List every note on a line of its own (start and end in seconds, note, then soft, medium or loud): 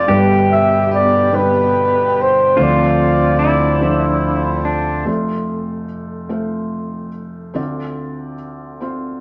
0.00 0.10 C4 medium
0.00 0.11 F4 medium
0.00 0.10 C5 medium
0.00 0.25 D5 medium
0.07 2.53 G1 medium
0.07 2.53 G2 medium
0.07 2.54 G2 medium
0.07 2.56 B2 medium
0.07 5.04 D3 medium
0.07 0.85 G3 medium
0.07 2.55 G3 medium
0.07 0.85 D4 medium
0.07 2.65 G4 medium
0.07 2.55 G4 medium
0.07 0.85 B4 medium
0.52 0.90 E5 medium
0.92 1.91 B3 medium
0.92 1.37 D5 medium
1.32 2.09 G3 medium
1.32 2.10 D4 medium
1.32 2.10 B4 medium
1.36 2.23 B4 medium
2.21 2.63 C5 medium
2.57 5.03 D2 medium
2.57 5.04 D2 medium
2.57 5.03 D3 medium
2.57 3.34 F3 medium
2.57 5.05 F3 medium
2.57 5.05 A3 medium
2.57 5.05 C4 medium
2.57 3.57 C4 medium
2.57 3.34 D4 medium
2.57 3.39 F4 medium
2.57 3.35 C5 medium
2.62 4.68 D5 medium
3.39 4.40 D4 medium
3.39 4.69 E4 medium
3.81 4.59 F3 medium
3.81 4.59 D4 medium
3.81 4.60 C5 medium
4.65 5.04 D4 medium
5.05 7.53 F1 soft
5.05 7.53 F2 medium
5.05 5.83 A3 medium
5.05 5.84 F4 medium
5.05 5.84 C5 medium
6.29 7.08 A3 medium
6.29 7.08 F4 soft
6.29 7.08 C5 medium
7.54 9.21 D2 soft
7.54 9.21 D3 medium
7.54 8.33 C4 medium
7.54 8.33 F4 medium
7.54 8.33 D5 medium
8.81 9.21 C4 medium
8.81 9.21 F4 soft
8.81 9.21 C5 medium